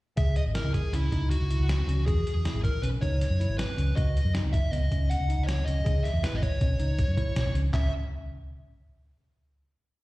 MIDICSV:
0, 0, Header, 1, 5, 480
1, 0, Start_track
1, 0, Tempo, 377121
1, 224, Time_signature, 5, 2, 24, 8
1, 12766, End_track
2, 0, Start_track
2, 0, Title_t, "Lead electric guitar"
2, 0, Program_c, 0, 29
2, 219, Note_on_c, 0, 76, 71
2, 465, Note_off_c, 0, 76, 0
2, 470, Note_on_c, 0, 75, 72
2, 535, Note_off_c, 0, 75, 0
2, 696, Note_on_c, 0, 70, 63
2, 937, Note_off_c, 0, 70, 0
2, 942, Note_on_c, 0, 68, 74
2, 1186, Note_on_c, 0, 64, 66
2, 1194, Note_off_c, 0, 68, 0
2, 1655, Note_off_c, 0, 64, 0
2, 1660, Note_on_c, 0, 66, 74
2, 2620, Note_off_c, 0, 66, 0
2, 2626, Note_on_c, 0, 68, 79
2, 3304, Note_off_c, 0, 68, 0
2, 3355, Note_on_c, 0, 70, 80
2, 3591, Note_on_c, 0, 71, 76
2, 3607, Note_off_c, 0, 70, 0
2, 3658, Note_off_c, 0, 71, 0
2, 3835, Note_on_c, 0, 73, 80
2, 4553, Note_off_c, 0, 73, 0
2, 4558, Note_on_c, 0, 71, 82
2, 5039, Note_off_c, 0, 71, 0
2, 5044, Note_on_c, 0, 75, 92
2, 5495, Note_off_c, 0, 75, 0
2, 5761, Note_on_c, 0, 76, 89
2, 5998, Note_off_c, 0, 76, 0
2, 5998, Note_on_c, 0, 75, 83
2, 6489, Note_on_c, 0, 78, 91
2, 6501, Note_off_c, 0, 75, 0
2, 6917, Note_on_c, 0, 75, 63
2, 6924, Note_off_c, 0, 78, 0
2, 6957, Note_off_c, 0, 75, 0
2, 6962, Note_on_c, 0, 73, 87
2, 7195, Note_off_c, 0, 73, 0
2, 7200, Note_on_c, 0, 75, 96
2, 7683, Note_off_c, 0, 75, 0
2, 7688, Note_on_c, 0, 76, 88
2, 7935, Note_on_c, 0, 71, 82
2, 7937, Note_off_c, 0, 76, 0
2, 8083, Note_on_c, 0, 75, 64
2, 8089, Note_off_c, 0, 71, 0
2, 8177, Note_off_c, 0, 75, 0
2, 8177, Note_on_c, 0, 73, 76
2, 9608, Note_off_c, 0, 73, 0
2, 9846, Note_on_c, 0, 76, 75
2, 10067, Note_off_c, 0, 76, 0
2, 12766, End_track
3, 0, Start_track
3, 0, Title_t, "Tine electric piano"
3, 0, Program_c, 1, 4
3, 215, Note_on_c, 1, 68, 79
3, 515, Note_off_c, 1, 68, 0
3, 700, Note_on_c, 1, 64, 65
3, 999, Note_off_c, 1, 64, 0
3, 1184, Note_on_c, 1, 61, 69
3, 1334, Note_off_c, 1, 61, 0
3, 1427, Note_on_c, 1, 63, 70
3, 1725, Note_off_c, 1, 63, 0
3, 1913, Note_on_c, 1, 64, 63
3, 2210, Note_off_c, 1, 64, 0
3, 2391, Note_on_c, 1, 61, 68
3, 2541, Note_off_c, 1, 61, 0
3, 2628, Note_on_c, 1, 68, 82
3, 2928, Note_off_c, 1, 68, 0
3, 3116, Note_on_c, 1, 64, 67
3, 3414, Note_off_c, 1, 64, 0
3, 3601, Note_on_c, 1, 61, 73
3, 3750, Note_off_c, 1, 61, 0
3, 3843, Note_on_c, 1, 63, 63
3, 4140, Note_off_c, 1, 63, 0
3, 4330, Note_on_c, 1, 64, 71
3, 4626, Note_off_c, 1, 64, 0
3, 4802, Note_on_c, 1, 61, 70
3, 4952, Note_off_c, 1, 61, 0
3, 5040, Note_on_c, 1, 66, 79
3, 5340, Note_off_c, 1, 66, 0
3, 5529, Note_on_c, 1, 63, 67
3, 5826, Note_off_c, 1, 63, 0
3, 6007, Note_on_c, 1, 59, 76
3, 6157, Note_off_c, 1, 59, 0
3, 6246, Note_on_c, 1, 61, 68
3, 6544, Note_off_c, 1, 61, 0
3, 6727, Note_on_c, 1, 63, 67
3, 7025, Note_off_c, 1, 63, 0
3, 7210, Note_on_c, 1, 61, 66
3, 7359, Note_off_c, 1, 61, 0
3, 7441, Note_on_c, 1, 68, 81
3, 7740, Note_off_c, 1, 68, 0
3, 7931, Note_on_c, 1, 64, 70
3, 8226, Note_off_c, 1, 64, 0
3, 8409, Note_on_c, 1, 61, 71
3, 8557, Note_off_c, 1, 61, 0
3, 8649, Note_on_c, 1, 63, 68
3, 8944, Note_off_c, 1, 63, 0
3, 9122, Note_on_c, 1, 64, 71
3, 9417, Note_off_c, 1, 64, 0
3, 9603, Note_on_c, 1, 61, 62
3, 9750, Note_off_c, 1, 61, 0
3, 9839, Note_on_c, 1, 61, 73
3, 10063, Note_off_c, 1, 61, 0
3, 12766, End_track
4, 0, Start_track
4, 0, Title_t, "Fingered electric bass"
4, 0, Program_c, 2, 33
4, 222, Note_on_c, 2, 37, 77
4, 500, Note_off_c, 2, 37, 0
4, 583, Note_on_c, 2, 32, 64
4, 769, Note_off_c, 2, 32, 0
4, 817, Note_on_c, 2, 37, 78
4, 1005, Note_off_c, 2, 37, 0
4, 1178, Note_on_c, 2, 37, 75
4, 1367, Note_off_c, 2, 37, 0
4, 1428, Note_on_c, 2, 37, 69
4, 1705, Note_off_c, 2, 37, 0
4, 1790, Note_on_c, 2, 37, 71
4, 1976, Note_off_c, 2, 37, 0
4, 2029, Note_on_c, 2, 37, 76
4, 2308, Note_off_c, 2, 37, 0
4, 2389, Note_on_c, 2, 37, 79
4, 2576, Note_off_c, 2, 37, 0
4, 2644, Note_on_c, 2, 40, 79
4, 2826, Note_off_c, 2, 40, 0
4, 2988, Note_on_c, 2, 40, 77
4, 3085, Note_off_c, 2, 40, 0
4, 3231, Note_on_c, 2, 32, 77
4, 3419, Note_off_c, 2, 32, 0
4, 3591, Note_on_c, 2, 35, 76
4, 3780, Note_off_c, 2, 35, 0
4, 3847, Note_on_c, 2, 37, 85
4, 4123, Note_off_c, 2, 37, 0
4, 4199, Note_on_c, 2, 42, 72
4, 4386, Note_off_c, 2, 42, 0
4, 4444, Note_on_c, 2, 32, 78
4, 4629, Note_off_c, 2, 32, 0
4, 4808, Note_on_c, 2, 37, 87
4, 4993, Note_off_c, 2, 37, 0
4, 5056, Note_on_c, 2, 37, 81
4, 5330, Note_off_c, 2, 37, 0
4, 5406, Note_on_c, 2, 42, 75
4, 5592, Note_off_c, 2, 42, 0
4, 5652, Note_on_c, 2, 37, 68
4, 5836, Note_off_c, 2, 37, 0
4, 6011, Note_on_c, 2, 37, 86
4, 6195, Note_off_c, 2, 37, 0
4, 6257, Note_on_c, 2, 37, 74
4, 6531, Note_off_c, 2, 37, 0
4, 6617, Note_on_c, 2, 37, 65
4, 6799, Note_off_c, 2, 37, 0
4, 6853, Note_on_c, 2, 37, 69
4, 7129, Note_off_c, 2, 37, 0
4, 7213, Note_on_c, 2, 37, 86
4, 7397, Note_off_c, 2, 37, 0
4, 7460, Note_on_c, 2, 37, 82
4, 7641, Note_off_c, 2, 37, 0
4, 7808, Note_on_c, 2, 40, 82
4, 7902, Note_off_c, 2, 40, 0
4, 8053, Note_on_c, 2, 32, 85
4, 8236, Note_off_c, 2, 32, 0
4, 8417, Note_on_c, 2, 35, 88
4, 8598, Note_off_c, 2, 35, 0
4, 8648, Note_on_c, 2, 37, 79
4, 8923, Note_off_c, 2, 37, 0
4, 9009, Note_on_c, 2, 42, 71
4, 9100, Note_off_c, 2, 42, 0
4, 9130, Note_on_c, 2, 34, 68
4, 9344, Note_off_c, 2, 34, 0
4, 9367, Note_on_c, 2, 35, 75
4, 9582, Note_off_c, 2, 35, 0
4, 9607, Note_on_c, 2, 37, 68
4, 9821, Note_off_c, 2, 37, 0
4, 9849, Note_on_c, 2, 37, 78
4, 10068, Note_off_c, 2, 37, 0
4, 12766, End_track
5, 0, Start_track
5, 0, Title_t, "Drums"
5, 218, Note_on_c, 9, 42, 65
5, 224, Note_on_c, 9, 36, 88
5, 345, Note_off_c, 9, 42, 0
5, 351, Note_off_c, 9, 36, 0
5, 459, Note_on_c, 9, 42, 58
5, 586, Note_off_c, 9, 42, 0
5, 701, Note_on_c, 9, 38, 91
5, 701, Note_on_c, 9, 42, 66
5, 828, Note_off_c, 9, 38, 0
5, 828, Note_off_c, 9, 42, 0
5, 945, Note_on_c, 9, 42, 59
5, 947, Note_on_c, 9, 36, 69
5, 1072, Note_off_c, 9, 42, 0
5, 1074, Note_off_c, 9, 36, 0
5, 1190, Note_on_c, 9, 42, 77
5, 1318, Note_off_c, 9, 42, 0
5, 1429, Note_on_c, 9, 42, 46
5, 1431, Note_on_c, 9, 36, 61
5, 1557, Note_off_c, 9, 42, 0
5, 1558, Note_off_c, 9, 36, 0
5, 1672, Note_on_c, 9, 42, 83
5, 1799, Note_off_c, 9, 42, 0
5, 1916, Note_on_c, 9, 42, 58
5, 2043, Note_off_c, 9, 42, 0
5, 2155, Note_on_c, 9, 38, 105
5, 2155, Note_on_c, 9, 42, 71
5, 2283, Note_off_c, 9, 38, 0
5, 2283, Note_off_c, 9, 42, 0
5, 2403, Note_on_c, 9, 42, 51
5, 2530, Note_off_c, 9, 42, 0
5, 2643, Note_on_c, 9, 36, 93
5, 2644, Note_on_c, 9, 42, 62
5, 2770, Note_off_c, 9, 36, 0
5, 2771, Note_off_c, 9, 42, 0
5, 2888, Note_on_c, 9, 42, 58
5, 3016, Note_off_c, 9, 42, 0
5, 3123, Note_on_c, 9, 38, 89
5, 3123, Note_on_c, 9, 42, 64
5, 3251, Note_off_c, 9, 38, 0
5, 3251, Note_off_c, 9, 42, 0
5, 3366, Note_on_c, 9, 36, 68
5, 3366, Note_on_c, 9, 42, 51
5, 3493, Note_off_c, 9, 36, 0
5, 3493, Note_off_c, 9, 42, 0
5, 3606, Note_on_c, 9, 42, 63
5, 3734, Note_off_c, 9, 42, 0
5, 3849, Note_on_c, 9, 36, 62
5, 3852, Note_on_c, 9, 42, 47
5, 3976, Note_off_c, 9, 36, 0
5, 3979, Note_off_c, 9, 42, 0
5, 4091, Note_on_c, 9, 38, 28
5, 4091, Note_on_c, 9, 42, 75
5, 4218, Note_off_c, 9, 38, 0
5, 4218, Note_off_c, 9, 42, 0
5, 4340, Note_on_c, 9, 42, 51
5, 4467, Note_off_c, 9, 42, 0
5, 4572, Note_on_c, 9, 38, 109
5, 4572, Note_on_c, 9, 42, 76
5, 4699, Note_off_c, 9, 38, 0
5, 4699, Note_off_c, 9, 42, 0
5, 4816, Note_on_c, 9, 42, 59
5, 4943, Note_off_c, 9, 42, 0
5, 5055, Note_on_c, 9, 36, 93
5, 5057, Note_on_c, 9, 42, 70
5, 5183, Note_off_c, 9, 36, 0
5, 5185, Note_off_c, 9, 42, 0
5, 5304, Note_on_c, 9, 42, 51
5, 5432, Note_off_c, 9, 42, 0
5, 5533, Note_on_c, 9, 38, 90
5, 5533, Note_on_c, 9, 42, 75
5, 5660, Note_off_c, 9, 38, 0
5, 5660, Note_off_c, 9, 42, 0
5, 5776, Note_on_c, 9, 36, 77
5, 5776, Note_on_c, 9, 42, 54
5, 5904, Note_off_c, 9, 36, 0
5, 5904, Note_off_c, 9, 42, 0
5, 6020, Note_on_c, 9, 42, 71
5, 6148, Note_off_c, 9, 42, 0
5, 6258, Note_on_c, 9, 36, 56
5, 6258, Note_on_c, 9, 42, 50
5, 6386, Note_off_c, 9, 36, 0
5, 6386, Note_off_c, 9, 42, 0
5, 6502, Note_on_c, 9, 42, 74
5, 6630, Note_off_c, 9, 42, 0
5, 6744, Note_on_c, 9, 42, 52
5, 6871, Note_off_c, 9, 42, 0
5, 6983, Note_on_c, 9, 38, 98
5, 6983, Note_on_c, 9, 42, 75
5, 7110, Note_off_c, 9, 38, 0
5, 7110, Note_off_c, 9, 42, 0
5, 7224, Note_on_c, 9, 42, 55
5, 7352, Note_off_c, 9, 42, 0
5, 7460, Note_on_c, 9, 42, 66
5, 7461, Note_on_c, 9, 36, 93
5, 7588, Note_off_c, 9, 42, 0
5, 7589, Note_off_c, 9, 36, 0
5, 7705, Note_on_c, 9, 38, 30
5, 7705, Note_on_c, 9, 42, 58
5, 7832, Note_off_c, 9, 38, 0
5, 7832, Note_off_c, 9, 42, 0
5, 7941, Note_on_c, 9, 38, 98
5, 7941, Note_on_c, 9, 42, 72
5, 8068, Note_off_c, 9, 38, 0
5, 8068, Note_off_c, 9, 42, 0
5, 8179, Note_on_c, 9, 36, 70
5, 8181, Note_on_c, 9, 42, 54
5, 8307, Note_off_c, 9, 36, 0
5, 8309, Note_off_c, 9, 42, 0
5, 8414, Note_on_c, 9, 42, 67
5, 8417, Note_on_c, 9, 36, 83
5, 8541, Note_off_c, 9, 42, 0
5, 8544, Note_off_c, 9, 36, 0
5, 8649, Note_on_c, 9, 42, 51
5, 8776, Note_off_c, 9, 42, 0
5, 8891, Note_on_c, 9, 42, 73
5, 8894, Note_on_c, 9, 36, 92
5, 9018, Note_off_c, 9, 42, 0
5, 9021, Note_off_c, 9, 36, 0
5, 9133, Note_on_c, 9, 36, 73
5, 9133, Note_on_c, 9, 42, 53
5, 9260, Note_off_c, 9, 36, 0
5, 9260, Note_off_c, 9, 42, 0
5, 9373, Note_on_c, 9, 38, 95
5, 9373, Note_on_c, 9, 42, 81
5, 9500, Note_off_c, 9, 38, 0
5, 9500, Note_off_c, 9, 42, 0
5, 9614, Note_on_c, 9, 42, 56
5, 9741, Note_off_c, 9, 42, 0
5, 9847, Note_on_c, 9, 39, 77
5, 9847, Note_on_c, 9, 43, 88
5, 9848, Note_on_c, 9, 36, 82
5, 9974, Note_off_c, 9, 39, 0
5, 9974, Note_off_c, 9, 43, 0
5, 9976, Note_off_c, 9, 36, 0
5, 12766, End_track
0, 0, End_of_file